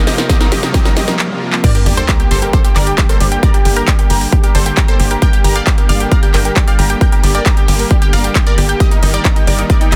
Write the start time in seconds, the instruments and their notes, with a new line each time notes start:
Already playing: riser
0.07 supersaw synth C3 F3 A#3 F4, synth arpeggio sound G4, synth pluck G4 D#5, snare, open hi-hat
0.18 synth pluck D#4, synth arpeggio sound A#4, snare, closed hi-hat
0.29 supersaw synth C3 F3 A#3 F4, synth arpeggio sound G4, synth pluck G4 D#5, kick, snare, closed hi-hat
0.40 supersaw synth C3 F3 A#3 F4, synth pluck D#4, synth arpeggio sound A#4, snare, closed hi-hat
0.52 synth arpeggio sound G4, synth pluck G4 D#5, snare, open hi-hat
0.63 supersaw synth C3 F3 A#3 F4, synth pluck D#4, synth arpeggio sound A#4, snare, closed hi-hat
0.74 supersaw synth C3 F3 A#3 F4, synth arpeggio sound G4, synth pluck G4 D#5, kick, snare, closed hi-hat
0.85 synth pluck D#4, synth arpeggio sound A#4, snare, closed hi-hat
0.96 supersaw synth C3 F3 A#3 F4, synth arpeggio sound G4, synth pluck G4 D#5, snare, open hi-hat
1.08 synth pluck D#4, synth arpeggio sound A#4, snare, closed hi-hat
1.19 supersaw synth C3 F3 A#3 F4, clap
1.30 supersaw synth C3 F3 A#3 F4
1.53 supersaw synth C3 F3 A#3 F4, clap
1.64 supersaw synth D3 G3 A#3 G4, synth arpeggio sound G4, synth pluck A#4 D5 D6, kick, closed hi-hat, crash, sub drop
1.75 synth pluck G4 G5, synth arpeggio sound A#4, closed hi-hat
1.86 analog synth bass G1, supersaw synth D3 G3 A#3 G4, synth pluck G4 G5, synth arpeggio sound D5, open hi-hat
1.97 synth pluck A4 C5 C6, synth arpeggio sound G5, closed hi-hat
2.09 supersaw synth D3 G3 A#3 G4, synth pluck G4 G5, synth arpeggio sound A#5, kick, clap, closed hi-hat
2.20 supersaw synth D3 G3 A#3 G4, synth pluck G4 G5, synth arpeggio sound G5, closed hi-hat
2.31 analog synth bass G1, synth arpeggio sound G4, synth pluck A4 C5 C6, open hi-hat
2.42 supersaw synth D3 G3 A#3 G4, synth pluck G4 G5, synth arpeggio sound A#4, closed hi-hat
2.53 supersaw synth D3 G3 A#3 G4, synth pluck A4 C5 C6, synth arpeggio sound D5, kick, closed hi-hat
2.65 synth pluck G4 G5, synth arpeggio sound G5, closed hi-hat
2.76 analog synth bass G1, supersaw synth D3 G3 A#3 G4, synth pluck A#4 D5 D6, synth arpeggio sound A#5, clap, open hi-hat
2.87 synth pluck G4 G5, synth arpeggio sound G5, closed hi-hat
2.98 supersaw synth D3 G3 A#3 G4, synth pluck G4, synth arpeggio sound G4, kick, clap, closed hi-hat
3.09 supersaw synth D3 G3 A#3 G4, synth pluck A4 C5 C6, synth arpeggio sound A#4, closed hi-hat
3.20 analog synth bass G1, synth pluck G4 G5, synth arpeggio sound D5, open hi-hat
3.32 supersaw synth D3 G3 A#3 G4, synth pluck G4 G5, synth arpeggio sound G5, closed hi-hat
3.43 supersaw synth D3 G3 A#3 G4, synth pluck A#4 D5 D6, synth arpeggio sound A#5, kick, closed hi-hat
3.54 synth pluck G4 G5, synth arpeggio sound G5, closed hi-hat
3.65 analog synth bass G1, supersaw synth D3 G3 A#3 G4, synth pluck G4 G5, synth arpeggio sound G4, open hi-hat
3.76 synth pluck G4 A#4 A#5, synth arpeggio sound A#4, closed hi-hat
3.88 supersaw synth D3 G3 A#3 G4, synth pluck G4 G5, synth arpeggio sound D5, kick, clap, closed hi-hat
3.99 supersaw synth D3 G3 A#3 G4, synth pluck G4 G5, synth arpeggio sound G5, closed hi-hat
4.10 analog synth bass G1, synth pluck G4 G5, synth arpeggio sound A#5, open hi-hat
4.21 supersaw synth D3 G3 A#3 G4, synth arpeggio sound G5, open hi-hat
4.32 supersaw synth D3 G3 A#3 G4, synth pluck G4 G5, synth arpeggio sound G4, kick, closed hi-hat
4.44 synth pluck G4 G5, synth arpeggio sound A#4, closed hi-hat
4.55 analog synth bass G1, supersaw synth D3 G3 A#3 G4, synth pluck A4 C5 C6, synth arpeggio sound D5, open hi-hat
4.66 synth pluck G4 G5, synth arpeggio sound G5, closed hi-hat
4.77 supersaw synth D3 G3 A#3 G4, synth pluck G5, synth arpeggio sound A#5, kick, clap, closed hi-hat
4.88 supersaw synth D3 G3 A#3 G4, synth pluck A4 C5 C6, synth arpeggio sound G5, closed hi-hat
5.00 analog synth bass G1, synth pluck G4 G5, synth arpeggio sound G4, open hi-hat
5.11 supersaw synth D3 G3 A#3 G4, synth pluck G4 G5, synth arpeggio sound A#4, closed hi-hat
5.22 supersaw synth D3 G3 A#3 G4, synth pluck A#4 G5 G6, synth arpeggio sound D5, kick, closed hi-hat
5.33 synth pluck G4 G5, synth arpeggio sound G5, closed hi-hat
5.44 analog synth bass G1, supersaw synth D3 G3 A#3 G4, synth pluck G4 G5, synth arpeggio sound A#5, open hi-hat
5.55 synth pluck D5 F5 F6, synth arpeggio sound G5, closed hi-hat
5.67 supersaw synth D3 G3 A#3 G4, synth pluck G4 G5, synth arpeggio sound G4, kick, clap, closed hi-hat
5.78 supersaw synth D3 G3 A#3 G4, synth pluck G4 G5, synth arpeggio sound A#4, closed hi-hat
5.89 analog synth bass G1, synth pluck D5 F5 F6, synth arpeggio sound D5, open hi-hat
6.00 supersaw synth D3 G3 A#3 G4, synth pluck G4 G5, synth arpeggio sound G5, closed hi-hat
6.11 supersaw synth D3 G3 A#3 G4, synth pluck D5 F5 F6, synth arpeggio sound A#5, kick, closed hi-hat
6.23 synth pluck G4 G5, synth arpeggio sound G5, closed hi-hat
6.34 analog synth bass G1, supersaw synth D3 G3 A#3 G4, synth arpeggio sound G4, synth pluck A#4 G5 G6, clap, open hi-hat
6.45 synth pluck G4 G5, synth arpeggio sound A#4, closed hi-hat
6.56 supersaw synth D3 G3 A#3 G4, synth pluck G4 G5, synth arpeggio sound D5, kick, clap, closed hi-hat
6.67 supersaw synth D3 G3 A#3 G4, synth pluck D5 F5 F6, synth arpeggio sound G5, closed hi-hat
6.79 analog synth bass G1, synth pluck G4 G5, synth arpeggio sound A#5, open hi-hat
6.90 supersaw synth D3 G3 A#3 G4, synth pluck G4 G5, synth arpeggio sound G5, closed hi-hat
7.01 supersaw synth D3 G3 A#3 G4, synth arpeggio sound G4, synth pluck A#4 G5 G6, kick, closed hi-hat
7.12 synth pluck G4 G5, synth arpeggio sound A#4, closed hi-hat
7.23 analog synth bass G1, supersaw synth D3 G3 A#3 G4, synth pluck G4 G5, synth arpeggio sound D5, open hi-hat
7.35 synth pluck A#4 D5 D6, synth arpeggio sound G5, closed hi-hat
7.46 supersaw synth D3 G3 A#3 G4, synth pluck G4 G5, synth arpeggio sound A#5, kick, clap, closed hi-hat
7.57 supersaw synth D3 G3 A#3 G4, synth pluck G4 G5, synth arpeggio sound G5, closed hi-hat
7.68 analog synth bass G1, synth pluck G4 G5, synth arpeggio sound G4, open hi-hat
7.79 supersaw synth D3 G3 A#3 G4, synth arpeggio sound A#4, open hi-hat
7.91 supersaw synth D3 G3 A#3 G4, synth pluck G4 G5, synth arpeggio sound D5, kick, closed hi-hat
8.02 synth pluck G4 G5, synth arpeggio sound G5, closed hi-hat
8.13 analog synth bass G1, supersaw synth D3 G3 A#3 G4, synth pluck D5 F5 F6, synth arpeggio sound A#5, open hi-hat
8.24 synth pluck G4 G5, synth arpeggio sound G5, closed hi-hat
8.35 supersaw synth D3 G3 A#3 G4, synth pluck G4 G5, synth arpeggio sound G4, kick, clap, closed hi-hat
8.47 supersaw synth D3 G3 A#3 G4, synth pluck A#4 D5 D6, synth arpeggio sound A#4, closed hi-hat
8.58 analog synth bass G1, synth pluck G4 G5, synth arpeggio sound D5, open hi-hat
8.69 supersaw synth D3 G3 A#3 G4, synth pluck G4 G5, synth arpeggio sound G5, closed hi-hat
8.80 supersaw synth D#3 G3 A#3 G4, synth arpeggio sound G4, synth pluck G4 D#5 D#6, kick, closed hi-hat
8.91 synth pluck D#4 D#5, synth arpeggio sound A#4, closed hi-hat
9.03 analog synth bass G1, supersaw synth D#3 G3 A#3 G4, synth pluck D#4 D#5, synth arpeggio sound D#5, open hi-hat
9.14 synth pluck A#4 D5 D6, synth arpeggio sound G5, closed hi-hat
9.25 supersaw synth D#3 G3 A#3 G4, synth pluck D#4 D#5, synth arpeggio sound A#5, kick, clap, closed hi-hat
9.36 supersaw synth D#3 G3 A#3 G4, synth pluck D#4 D#5, synth arpeggio sound G5, closed hi-hat
9.47 analog synth bass G1, synth arpeggio sound G4, synth pluck A#4 D5 D6, open hi-hat
9.58 supersaw synth D#3 G3 A#3 G4, synth pluck D#4 D#5, synth arpeggio sound A#4, closed hi-hat
9.70 supersaw synth D#3 G3 A#3 G4, synth pluck A#4 D5 D6, synth arpeggio sound D#5, kick, closed hi-hat
9.81 synth pluck D#4 D#5, synth arpeggio sound G5, closed hi-hat
9.92 analog synth bass G1, supersaw synth D#3 G3 A#3 G4, synth pluck G4 D#5 D#6, synth arpeggio sound A#5, clap, open hi-hat